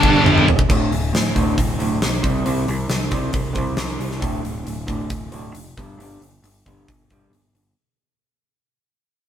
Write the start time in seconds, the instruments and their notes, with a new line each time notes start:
Already playing: distorted electric guitar G2 D3 G3, overdriven electric guitar G2 D3 G3, lead electric guitar D4 D5
0.03 picked electric bass G1, kick
0.24 picked electric bass G1, mid tom
0.38 mid tom
0.46 picked electric bass E1, floor tom
0.59 kick
0.69 picked electric bass D1, clean electric guitar D2 A2 D3, kick, crash
0.90 picked electric bass D1, clean electric guitar D2 A2, open hi-hat
1.13 picked electric bass D1, clean electric guitar D2 A2, snare, open hi-hat
1.35 picked electric bass D1, clean electric guitar D2 A2 D3, kick, open hi-hat
1.57 picked electric bass D1, clean electric guitar D2 A2, kick, open hi-hat
1.79 picked electric bass D1, clean electric guitar D2 A2 D3, open hi-hat
2.01 picked electric bass B1, clean electric guitar D2 A2, snare, open hi-hat
2.22 picked electric bass C2, clean electric guitar C3 G3 C4, kick, open hi-hat
2.44 picked electric bass C2, clean electric guitar C3 G3 C4, open hi-hat
2.67 picked electric bass C2, clean electric guitar C3 G3, open hi-hat
2.88 picked electric bass C2, clean electric guitar C3 G3, snare, open hi-hat
3.10 picked electric bass C2, clean electric guitar C3 G3 C4, kick, snare, open hi-hat
3.33 picked electric bass C2, clean electric guitar C3 G3, kick, open hi-hat
3.53 picked electric bass C2, clean electric guitar C3 G3 C4, kick, open hi-hat
3.75 picked electric bass C2, clean electric guitar C3 G3, snare, open hi-hat
3.99 picked electric bass C2, clean electric guitar C3 G3, open hi-hat
4.11 snare
4.20 picked electric bass D1, clean electric guitar D2 A2 D3, kick, open hi-hat
4.42 picked electric bass D1, clean electric guitar D2 A2, open hi-hat
4.64 picked electric bass D1, clean electric guitar D2 A2, open hi-hat
4.87 picked electric bass D1, clean electric guitar D2 A2 D3, kick, open hi-hat
5.09 picked electric bass D1, clean electric guitar D2 A2, kick, open hi-hat
5.32 picked electric bass D1, clean electric guitar D2 A2 D3, open hi-hat
5.54 picked electric bass F1, clean electric guitar D2 A2, open hi-hat
5.77 picked electric bass G1, clean electric guitar G2 D3 G3, kick, open hi-hat
5.97 picked electric bass G1, clean electric guitar G2 D3 G3, open hi-hat
6.20 picked electric bass G1, clean electric guitar G2 D3, open hi-hat
6.43 picked electric bass G1, clean electric guitar G2 D3, open hi-hat
6.66 picked electric bass G1, clean electric guitar G2 D3 G3, kick, open hi-hat
6.88 picked electric bass G1, clean electric guitar G2 D3, kick, open hi-hat
7.10 picked electric bass G1, clean electric guitar G2 D3 G3, kick, open hi-hat
7.30 picked electric bass G1, clean electric guitar G2 D3, open hi-hat
7.53 picked electric bass G1, clean electric guitar G2 D3, open hi-hat